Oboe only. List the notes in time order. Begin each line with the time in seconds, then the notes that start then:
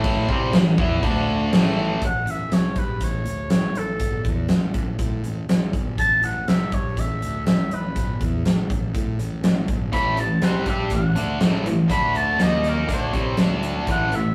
2.05 F#5
2.31 E5
2.54 C#5
2.78 B4
3.04 C#5
3.52 C#5
3.78 A4
5.99 A5
6.25 F#5
6.49 E5
6.75 C#5
6.91 C#5
7.00 E5
7.47 E5
7.74 B4
9.93 B5
10.20 A5
10.44 F#5
10.70 E5
10.95 F#5
11.91 B5
12.17 A5
12.43 D#5
12.69 A#4
12.94 C#5
13.91 F#5
14.16 E5